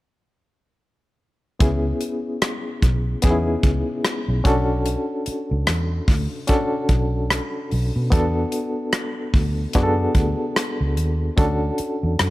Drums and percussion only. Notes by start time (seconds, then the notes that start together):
1.60 kick, closed hi-hat
2.01 closed hi-hat
2.42 cross-stick, closed hi-hat
2.82 kick, closed hi-hat
3.22 kick, closed hi-hat
3.63 kick, closed hi-hat
4.05 cross-stick, closed hi-hat
4.45 kick, closed hi-hat
4.86 closed hi-hat
5.26 closed hi-hat
5.67 cross-stick, closed hi-hat
6.08 kick, open hi-hat
6.48 kick, closed hi-hat
6.89 kick, closed hi-hat
7.30 cross-stick, closed hi-hat
7.71 open hi-hat
8.12 kick, closed hi-hat
8.52 closed hi-hat
8.93 cross-stick, closed hi-hat
9.34 kick, open hi-hat
9.73 kick, closed hi-hat
10.15 kick, closed hi-hat
10.56 cross-stick, closed hi-hat
10.97 closed hi-hat
11.38 kick, closed hi-hat
11.78 closed hi-hat
12.19 cross-stick, closed hi-hat